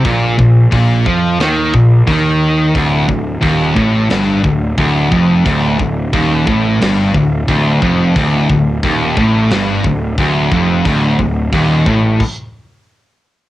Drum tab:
CC |--------|--------|--------|--------|
HH |o-o-o-o-|o-o-o-o-|o-o-o-o-|o-o-o-o-|
SD |----o---|----o---|----o---|----o---|
BD |oooo-oo-|oooo-ooo|oooo-ooo|oooo-ooo|

CC |----x---|
HH |o-o-----|
SD |--------|
BD |ooooo---|